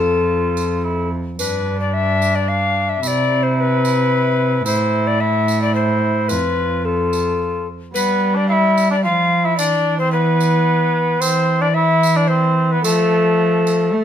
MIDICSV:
0, 0, Header, 1, 5, 480
1, 0, Start_track
1, 0, Tempo, 545951
1, 1226, Time_signature, 3, 2, 24, 8
1, 12347, End_track
2, 0, Start_track
2, 0, Title_t, "Recorder"
2, 0, Program_c, 0, 74
2, 0, Note_on_c, 0, 69, 70
2, 957, Note_off_c, 0, 69, 0
2, 1222, Note_on_c, 0, 71, 65
2, 1559, Note_off_c, 0, 71, 0
2, 1583, Note_on_c, 0, 74, 74
2, 1701, Note_on_c, 0, 76, 71
2, 1714, Note_off_c, 0, 74, 0
2, 2069, Note_on_c, 0, 74, 69
2, 2082, Note_off_c, 0, 76, 0
2, 2183, Note_on_c, 0, 77, 80
2, 2196, Note_off_c, 0, 74, 0
2, 2542, Note_on_c, 0, 76, 67
2, 2556, Note_off_c, 0, 77, 0
2, 2661, Note_off_c, 0, 76, 0
2, 2661, Note_on_c, 0, 76, 67
2, 2702, Note_on_c, 0, 74, 73
2, 2711, Note_off_c, 0, 76, 0
2, 3017, Note_on_c, 0, 72, 70
2, 3030, Note_off_c, 0, 74, 0
2, 3131, Note_off_c, 0, 72, 0
2, 3131, Note_on_c, 0, 72, 78
2, 3168, Note_on_c, 0, 71, 85
2, 3177, Note_off_c, 0, 72, 0
2, 4088, Note_off_c, 0, 71, 0
2, 4095, Note_on_c, 0, 72, 77
2, 4459, Note_on_c, 0, 74, 79
2, 4473, Note_off_c, 0, 72, 0
2, 4576, Note_on_c, 0, 76, 82
2, 4589, Note_off_c, 0, 74, 0
2, 4932, Note_off_c, 0, 76, 0
2, 4942, Note_on_c, 0, 74, 78
2, 5049, Note_off_c, 0, 74, 0
2, 5054, Note_on_c, 0, 72, 69
2, 5525, Note_on_c, 0, 71, 72
2, 5538, Note_off_c, 0, 72, 0
2, 6023, Note_on_c, 0, 69, 58
2, 6036, Note_off_c, 0, 71, 0
2, 6747, Note_off_c, 0, 69, 0
2, 6982, Note_on_c, 0, 71, 78
2, 7358, Note_on_c, 0, 74, 78
2, 7372, Note_off_c, 0, 71, 0
2, 7455, Note_off_c, 0, 74, 0
2, 7460, Note_on_c, 0, 77, 86
2, 7496, Note_on_c, 0, 76, 93
2, 7505, Note_off_c, 0, 77, 0
2, 7816, Note_off_c, 0, 76, 0
2, 7834, Note_on_c, 0, 74, 82
2, 7943, Note_off_c, 0, 74, 0
2, 7948, Note_on_c, 0, 77, 88
2, 8311, Note_on_c, 0, 76, 76
2, 8324, Note_off_c, 0, 77, 0
2, 8412, Note_off_c, 0, 76, 0
2, 8417, Note_on_c, 0, 74, 85
2, 8771, Note_off_c, 0, 74, 0
2, 8780, Note_on_c, 0, 72, 79
2, 8893, Note_off_c, 0, 72, 0
2, 8898, Note_on_c, 0, 71, 96
2, 9850, Note_on_c, 0, 72, 96
2, 9863, Note_off_c, 0, 71, 0
2, 10212, Note_on_c, 0, 74, 93
2, 10225, Note_off_c, 0, 72, 0
2, 10324, Note_on_c, 0, 76, 98
2, 10337, Note_off_c, 0, 74, 0
2, 10696, Note_on_c, 0, 74, 91
2, 10709, Note_off_c, 0, 76, 0
2, 10793, Note_on_c, 0, 72, 81
2, 10806, Note_off_c, 0, 74, 0
2, 11177, Note_on_c, 0, 71, 75
2, 11191, Note_off_c, 0, 72, 0
2, 11277, Note_off_c, 0, 71, 0
2, 11282, Note_on_c, 0, 69, 83
2, 12347, Note_off_c, 0, 69, 0
2, 12347, End_track
3, 0, Start_track
3, 0, Title_t, "Cor anglais"
3, 0, Program_c, 1, 69
3, 0, Note_on_c, 1, 65, 55
3, 745, Note_on_c, 1, 64, 46
3, 758, Note_off_c, 1, 65, 0
3, 986, Note_off_c, 1, 64, 0
3, 1225, Note_on_c, 1, 62, 60
3, 2628, Note_off_c, 1, 62, 0
3, 2654, Note_on_c, 1, 64, 63
3, 4060, Note_off_c, 1, 64, 0
3, 4092, Note_on_c, 1, 64, 61
3, 4559, Note_off_c, 1, 64, 0
3, 4570, Note_on_c, 1, 64, 59
3, 5040, Note_off_c, 1, 64, 0
3, 5049, Note_on_c, 1, 64, 53
3, 5534, Note_on_c, 1, 65, 54
3, 5548, Note_off_c, 1, 64, 0
3, 6017, Note_off_c, 1, 65, 0
3, 6022, Note_on_c, 1, 65, 55
3, 6732, Note_off_c, 1, 65, 0
3, 6974, Note_on_c, 1, 59, 74
3, 7340, Note_on_c, 1, 62, 64
3, 7353, Note_off_c, 1, 59, 0
3, 7459, Note_off_c, 1, 62, 0
3, 7464, Note_on_c, 1, 64, 84
3, 7818, Note_off_c, 1, 64, 0
3, 7830, Note_on_c, 1, 62, 71
3, 7883, Note_off_c, 1, 62, 0
3, 7949, Note_on_c, 1, 65, 83
3, 8304, Note_on_c, 1, 64, 69
3, 8317, Note_off_c, 1, 65, 0
3, 8423, Note_off_c, 1, 64, 0
3, 8428, Note_on_c, 1, 62, 76
3, 8776, Note_off_c, 1, 62, 0
3, 8787, Note_on_c, 1, 60, 66
3, 8897, Note_off_c, 1, 60, 0
3, 8902, Note_on_c, 1, 59, 84
3, 9860, Note_on_c, 1, 60, 80
3, 9873, Note_off_c, 1, 59, 0
3, 10201, Note_off_c, 1, 60, 0
3, 10206, Note_on_c, 1, 62, 80
3, 10261, Note_off_c, 1, 62, 0
3, 10327, Note_on_c, 1, 64, 90
3, 10686, Note_on_c, 1, 62, 78
3, 10700, Note_off_c, 1, 64, 0
3, 10801, Note_off_c, 1, 62, 0
3, 10806, Note_on_c, 1, 60, 77
3, 11161, Note_off_c, 1, 60, 0
3, 11183, Note_on_c, 1, 59, 69
3, 11285, Note_off_c, 1, 59, 0
3, 11291, Note_on_c, 1, 57, 80
3, 12347, Note_off_c, 1, 57, 0
3, 12347, End_track
4, 0, Start_track
4, 0, Title_t, "Cello"
4, 0, Program_c, 2, 42
4, 0, Note_on_c, 2, 41, 63
4, 1023, Note_off_c, 2, 41, 0
4, 1222, Note_on_c, 2, 43, 62
4, 2627, Note_off_c, 2, 43, 0
4, 2672, Note_on_c, 2, 48, 64
4, 4069, Note_off_c, 2, 48, 0
4, 4096, Note_on_c, 2, 45, 73
4, 5536, Note_on_c, 2, 41, 60
4, 5549, Note_off_c, 2, 45, 0
4, 6811, Note_off_c, 2, 41, 0
4, 6991, Note_on_c, 2, 55, 69
4, 7954, Note_on_c, 2, 53, 64
4, 7967, Note_off_c, 2, 55, 0
4, 8423, Note_on_c, 2, 52, 72
4, 8436, Note_off_c, 2, 53, 0
4, 9849, Note_off_c, 2, 52, 0
4, 9855, Note_on_c, 2, 52, 80
4, 11262, Note_off_c, 2, 52, 0
4, 11295, Note_on_c, 2, 53, 75
4, 12252, Note_on_c, 2, 57, 60
4, 12266, Note_off_c, 2, 53, 0
4, 12347, Note_off_c, 2, 57, 0
4, 12347, End_track
5, 0, Start_track
5, 0, Title_t, "Drums"
5, 501, Note_on_c, 9, 54, 41
5, 589, Note_off_c, 9, 54, 0
5, 1222, Note_on_c, 9, 54, 71
5, 1310, Note_off_c, 9, 54, 0
5, 1949, Note_on_c, 9, 54, 45
5, 2037, Note_off_c, 9, 54, 0
5, 2665, Note_on_c, 9, 54, 68
5, 2753, Note_off_c, 9, 54, 0
5, 3383, Note_on_c, 9, 54, 45
5, 3471, Note_off_c, 9, 54, 0
5, 4095, Note_on_c, 9, 54, 72
5, 4183, Note_off_c, 9, 54, 0
5, 4820, Note_on_c, 9, 54, 48
5, 4907, Note_off_c, 9, 54, 0
5, 5532, Note_on_c, 9, 54, 72
5, 5620, Note_off_c, 9, 54, 0
5, 6267, Note_on_c, 9, 54, 45
5, 6355, Note_off_c, 9, 54, 0
5, 6994, Note_on_c, 9, 54, 77
5, 7082, Note_off_c, 9, 54, 0
5, 7714, Note_on_c, 9, 54, 46
5, 7802, Note_off_c, 9, 54, 0
5, 8428, Note_on_c, 9, 54, 80
5, 8516, Note_off_c, 9, 54, 0
5, 9146, Note_on_c, 9, 54, 51
5, 9234, Note_off_c, 9, 54, 0
5, 9861, Note_on_c, 9, 54, 84
5, 9948, Note_off_c, 9, 54, 0
5, 10579, Note_on_c, 9, 54, 51
5, 10667, Note_off_c, 9, 54, 0
5, 11292, Note_on_c, 9, 54, 84
5, 11380, Note_off_c, 9, 54, 0
5, 12017, Note_on_c, 9, 54, 48
5, 12105, Note_off_c, 9, 54, 0
5, 12347, End_track
0, 0, End_of_file